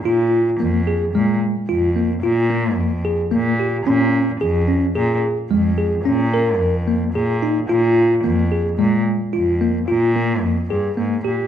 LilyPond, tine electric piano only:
\new Staff \with { instrumentName = "Tine electric piano" } { \time 7/4 \key bes \dorian \tempo 4 = 110 f'4 bes8 aes'8 aes4 f'8 bes8 f'8 bes4 aes'8 bes8 g'8 | des'4 aes'8 des'8 aes'4 aes8 aes'8 des'8 bes'4 bes8 aes'8 ees'8 | f'4 bes8 aes'8 aes4 f'8 bes8 f'8 bes4 aes'8 bes8 g'8 | }